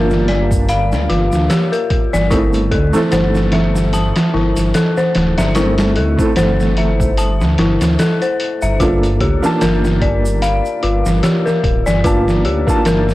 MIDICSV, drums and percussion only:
0, 0, Header, 1, 2, 480
1, 0, Start_track
1, 0, Tempo, 810811
1, 1372, Time_signature, 4, 2, 24, 8
1, 7779, End_track
2, 0, Start_track
2, 0, Title_t, "Drums"
2, 62, Note_on_c, 9, 82, 32
2, 67, Note_on_c, 9, 38, 37
2, 121, Note_off_c, 9, 82, 0
2, 127, Note_off_c, 9, 38, 0
2, 166, Note_on_c, 9, 42, 58
2, 170, Note_on_c, 9, 38, 36
2, 225, Note_off_c, 9, 42, 0
2, 229, Note_off_c, 9, 38, 0
2, 301, Note_on_c, 9, 36, 86
2, 307, Note_on_c, 9, 82, 73
2, 360, Note_off_c, 9, 36, 0
2, 366, Note_off_c, 9, 82, 0
2, 406, Note_on_c, 9, 42, 79
2, 407, Note_on_c, 9, 82, 56
2, 465, Note_off_c, 9, 42, 0
2, 466, Note_off_c, 9, 82, 0
2, 545, Note_on_c, 9, 82, 37
2, 548, Note_on_c, 9, 38, 46
2, 604, Note_off_c, 9, 82, 0
2, 607, Note_off_c, 9, 38, 0
2, 649, Note_on_c, 9, 42, 56
2, 653, Note_on_c, 9, 38, 34
2, 709, Note_off_c, 9, 42, 0
2, 713, Note_off_c, 9, 38, 0
2, 783, Note_on_c, 9, 82, 62
2, 786, Note_on_c, 9, 38, 37
2, 842, Note_off_c, 9, 82, 0
2, 846, Note_off_c, 9, 38, 0
2, 887, Note_on_c, 9, 42, 78
2, 889, Note_on_c, 9, 82, 52
2, 891, Note_on_c, 9, 38, 102
2, 946, Note_off_c, 9, 42, 0
2, 948, Note_off_c, 9, 82, 0
2, 950, Note_off_c, 9, 38, 0
2, 1023, Note_on_c, 9, 42, 39
2, 1025, Note_on_c, 9, 82, 32
2, 1082, Note_off_c, 9, 42, 0
2, 1084, Note_off_c, 9, 82, 0
2, 1126, Note_on_c, 9, 42, 58
2, 1127, Note_on_c, 9, 36, 91
2, 1185, Note_off_c, 9, 42, 0
2, 1186, Note_off_c, 9, 36, 0
2, 1266, Note_on_c, 9, 38, 45
2, 1267, Note_on_c, 9, 82, 67
2, 1325, Note_off_c, 9, 38, 0
2, 1326, Note_off_c, 9, 82, 0
2, 1368, Note_on_c, 9, 36, 106
2, 1368, Note_on_c, 9, 82, 56
2, 1371, Note_on_c, 9, 42, 79
2, 1427, Note_off_c, 9, 36, 0
2, 1427, Note_off_c, 9, 82, 0
2, 1430, Note_off_c, 9, 42, 0
2, 1498, Note_on_c, 9, 82, 33
2, 1505, Note_on_c, 9, 42, 38
2, 1557, Note_off_c, 9, 82, 0
2, 1564, Note_off_c, 9, 42, 0
2, 1607, Note_on_c, 9, 36, 80
2, 1608, Note_on_c, 9, 42, 65
2, 1666, Note_off_c, 9, 36, 0
2, 1667, Note_off_c, 9, 42, 0
2, 1738, Note_on_c, 9, 82, 60
2, 1747, Note_on_c, 9, 38, 39
2, 1797, Note_off_c, 9, 82, 0
2, 1806, Note_off_c, 9, 38, 0
2, 1846, Note_on_c, 9, 42, 76
2, 1846, Note_on_c, 9, 82, 59
2, 1850, Note_on_c, 9, 38, 109
2, 1905, Note_off_c, 9, 42, 0
2, 1905, Note_off_c, 9, 82, 0
2, 1909, Note_off_c, 9, 38, 0
2, 1982, Note_on_c, 9, 82, 33
2, 1984, Note_on_c, 9, 38, 40
2, 2041, Note_off_c, 9, 82, 0
2, 2043, Note_off_c, 9, 38, 0
2, 2082, Note_on_c, 9, 42, 68
2, 2087, Note_on_c, 9, 38, 89
2, 2142, Note_off_c, 9, 42, 0
2, 2146, Note_off_c, 9, 38, 0
2, 2223, Note_on_c, 9, 38, 34
2, 2224, Note_on_c, 9, 82, 66
2, 2283, Note_off_c, 9, 38, 0
2, 2284, Note_off_c, 9, 82, 0
2, 2325, Note_on_c, 9, 42, 56
2, 2330, Note_on_c, 9, 38, 31
2, 2330, Note_on_c, 9, 82, 64
2, 2385, Note_off_c, 9, 42, 0
2, 2389, Note_off_c, 9, 38, 0
2, 2389, Note_off_c, 9, 82, 0
2, 2460, Note_on_c, 9, 42, 71
2, 2465, Note_on_c, 9, 38, 89
2, 2467, Note_on_c, 9, 82, 31
2, 2520, Note_off_c, 9, 42, 0
2, 2524, Note_off_c, 9, 38, 0
2, 2526, Note_off_c, 9, 82, 0
2, 2571, Note_on_c, 9, 38, 34
2, 2631, Note_off_c, 9, 38, 0
2, 2703, Note_on_c, 9, 42, 52
2, 2704, Note_on_c, 9, 82, 69
2, 2707, Note_on_c, 9, 38, 30
2, 2762, Note_off_c, 9, 42, 0
2, 2763, Note_off_c, 9, 82, 0
2, 2766, Note_off_c, 9, 38, 0
2, 2807, Note_on_c, 9, 42, 80
2, 2809, Note_on_c, 9, 82, 57
2, 2811, Note_on_c, 9, 38, 101
2, 2867, Note_off_c, 9, 42, 0
2, 2869, Note_off_c, 9, 82, 0
2, 2871, Note_off_c, 9, 38, 0
2, 2943, Note_on_c, 9, 82, 33
2, 2945, Note_on_c, 9, 38, 44
2, 3002, Note_off_c, 9, 82, 0
2, 3005, Note_off_c, 9, 38, 0
2, 3047, Note_on_c, 9, 42, 74
2, 3051, Note_on_c, 9, 38, 90
2, 3106, Note_off_c, 9, 42, 0
2, 3110, Note_off_c, 9, 38, 0
2, 3182, Note_on_c, 9, 42, 65
2, 3186, Note_on_c, 9, 38, 89
2, 3189, Note_on_c, 9, 82, 64
2, 3242, Note_off_c, 9, 42, 0
2, 3246, Note_off_c, 9, 38, 0
2, 3249, Note_off_c, 9, 82, 0
2, 3284, Note_on_c, 9, 42, 76
2, 3287, Note_on_c, 9, 82, 58
2, 3288, Note_on_c, 9, 38, 95
2, 3343, Note_off_c, 9, 42, 0
2, 3347, Note_off_c, 9, 38, 0
2, 3347, Note_off_c, 9, 82, 0
2, 3420, Note_on_c, 9, 42, 66
2, 3424, Note_on_c, 9, 38, 96
2, 3429, Note_on_c, 9, 82, 34
2, 3479, Note_off_c, 9, 42, 0
2, 3484, Note_off_c, 9, 38, 0
2, 3488, Note_off_c, 9, 82, 0
2, 3526, Note_on_c, 9, 42, 63
2, 3585, Note_off_c, 9, 42, 0
2, 3662, Note_on_c, 9, 36, 88
2, 3666, Note_on_c, 9, 82, 70
2, 3721, Note_off_c, 9, 36, 0
2, 3725, Note_off_c, 9, 82, 0
2, 3764, Note_on_c, 9, 42, 82
2, 3768, Note_on_c, 9, 38, 95
2, 3774, Note_on_c, 9, 82, 50
2, 3823, Note_off_c, 9, 42, 0
2, 3828, Note_off_c, 9, 38, 0
2, 3833, Note_off_c, 9, 82, 0
2, 3908, Note_on_c, 9, 38, 36
2, 3908, Note_on_c, 9, 82, 31
2, 3967, Note_off_c, 9, 38, 0
2, 3967, Note_off_c, 9, 82, 0
2, 4006, Note_on_c, 9, 42, 61
2, 4010, Note_on_c, 9, 38, 33
2, 4065, Note_off_c, 9, 42, 0
2, 4070, Note_off_c, 9, 38, 0
2, 4143, Note_on_c, 9, 36, 87
2, 4149, Note_on_c, 9, 82, 67
2, 4202, Note_off_c, 9, 36, 0
2, 4208, Note_off_c, 9, 82, 0
2, 4247, Note_on_c, 9, 42, 79
2, 4252, Note_on_c, 9, 82, 59
2, 4306, Note_off_c, 9, 42, 0
2, 4311, Note_off_c, 9, 82, 0
2, 4386, Note_on_c, 9, 82, 31
2, 4389, Note_on_c, 9, 38, 45
2, 4446, Note_off_c, 9, 82, 0
2, 4448, Note_off_c, 9, 38, 0
2, 4487, Note_on_c, 9, 42, 68
2, 4492, Note_on_c, 9, 38, 92
2, 4547, Note_off_c, 9, 42, 0
2, 4551, Note_off_c, 9, 38, 0
2, 4623, Note_on_c, 9, 42, 70
2, 4625, Note_on_c, 9, 82, 75
2, 4627, Note_on_c, 9, 38, 86
2, 4682, Note_off_c, 9, 42, 0
2, 4684, Note_off_c, 9, 82, 0
2, 4687, Note_off_c, 9, 38, 0
2, 4729, Note_on_c, 9, 42, 80
2, 4732, Note_on_c, 9, 82, 56
2, 4734, Note_on_c, 9, 38, 102
2, 4789, Note_off_c, 9, 42, 0
2, 4791, Note_off_c, 9, 82, 0
2, 4793, Note_off_c, 9, 38, 0
2, 4864, Note_on_c, 9, 42, 41
2, 4865, Note_on_c, 9, 82, 30
2, 4924, Note_off_c, 9, 42, 0
2, 4924, Note_off_c, 9, 82, 0
2, 4971, Note_on_c, 9, 42, 74
2, 5031, Note_off_c, 9, 42, 0
2, 5103, Note_on_c, 9, 82, 63
2, 5162, Note_off_c, 9, 82, 0
2, 5209, Note_on_c, 9, 42, 83
2, 5210, Note_on_c, 9, 36, 104
2, 5213, Note_on_c, 9, 82, 53
2, 5269, Note_off_c, 9, 36, 0
2, 5269, Note_off_c, 9, 42, 0
2, 5272, Note_off_c, 9, 82, 0
2, 5347, Note_on_c, 9, 42, 41
2, 5352, Note_on_c, 9, 82, 37
2, 5406, Note_off_c, 9, 42, 0
2, 5411, Note_off_c, 9, 82, 0
2, 5449, Note_on_c, 9, 36, 87
2, 5449, Note_on_c, 9, 42, 64
2, 5508, Note_off_c, 9, 42, 0
2, 5509, Note_off_c, 9, 36, 0
2, 5586, Note_on_c, 9, 82, 66
2, 5588, Note_on_c, 9, 38, 36
2, 5645, Note_off_c, 9, 82, 0
2, 5647, Note_off_c, 9, 38, 0
2, 5690, Note_on_c, 9, 42, 80
2, 5691, Note_on_c, 9, 82, 61
2, 5694, Note_on_c, 9, 38, 100
2, 5749, Note_off_c, 9, 42, 0
2, 5750, Note_off_c, 9, 82, 0
2, 5754, Note_off_c, 9, 38, 0
2, 5829, Note_on_c, 9, 38, 41
2, 5829, Note_on_c, 9, 82, 38
2, 5889, Note_off_c, 9, 38, 0
2, 5889, Note_off_c, 9, 82, 0
2, 5929, Note_on_c, 9, 36, 83
2, 5930, Note_on_c, 9, 42, 59
2, 5988, Note_off_c, 9, 36, 0
2, 5989, Note_off_c, 9, 42, 0
2, 6072, Note_on_c, 9, 82, 78
2, 6131, Note_off_c, 9, 82, 0
2, 6169, Note_on_c, 9, 42, 76
2, 6175, Note_on_c, 9, 82, 66
2, 6228, Note_off_c, 9, 42, 0
2, 6234, Note_off_c, 9, 82, 0
2, 6307, Note_on_c, 9, 82, 34
2, 6366, Note_off_c, 9, 82, 0
2, 6409, Note_on_c, 9, 42, 58
2, 6469, Note_off_c, 9, 42, 0
2, 6545, Note_on_c, 9, 82, 71
2, 6549, Note_on_c, 9, 38, 52
2, 6605, Note_off_c, 9, 82, 0
2, 6608, Note_off_c, 9, 38, 0
2, 6648, Note_on_c, 9, 42, 78
2, 6652, Note_on_c, 9, 38, 103
2, 6653, Note_on_c, 9, 82, 61
2, 6707, Note_off_c, 9, 42, 0
2, 6711, Note_off_c, 9, 38, 0
2, 6712, Note_off_c, 9, 82, 0
2, 6789, Note_on_c, 9, 82, 32
2, 6790, Note_on_c, 9, 38, 45
2, 6848, Note_off_c, 9, 82, 0
2, 6849, Note_off_c, 9, 38, 0
2, 6889, Note_on_c, 9, 36, 91
2, 6891, Note_on_c, 9, 42, 59
2, 6948, Note_off_c, 9, 36, 0
2, 6950, Note_off_c, 9, 42, 0
2, 7026, Note_on_c, 9, 82, 81
2, 7031, Note_on_c, 9, 38, 50
2, 7085, Note_off_c, 9, 82, 0
2, 7090, Note_off_c, 9, 38, 0
2, 7128, Note_on_c, 9, 42, 85
2, 7129, Note_on_c, 9, 36, 105
2, 7137, Note_on_c, 9, 82, 59
2, 7188, Note_off_c, 9, 36, 0
2, 7188, Note_off_c, 9, 42, 0
2, 7196, Note_off_c, 9, 82, 0
2, 7271, Note_on_c, 9, 38, 40
2, 7271, Note_on_c, 9, 82, 34
2, 7330, Note_off_c, 9, 38, 0
2, 7330, Note_off_c, 9, 82, 0
2, 7369, Note_on_c, 9, 42, 61
2, 7428, Note_off_c, 9, 42, 0
2, 7503, Note_on_c, 9, 36, 83
2, 7510, Note_on_c, 9, 82, 69
2, 7563, Note_off_c, 9, 36, 0
2, 7570, Note_off_c, 9, 82, 0
2, 7608, Note_on_c, 9, 42, 81
2, 7612, Note_on_c, 9, 38, 104
2, 7615, Note_on_c, 9, 82, 57
2, 7667, Note_off_c, 9, 42, 0
2, 7671, Note_off_c, 9, 38, 0
2, 7674, Note_off_c, 9, 82, 0
2, 7748, Note_on_c, 9, 38, 36
2, 7751, Note_on_c, 9, 82, 34
2, 7779, Note_off_c, 9, 38, 0
2, 7779, Note_off_c, 9, 82, 0
2, 7779, End_track
0, 0, End_of_file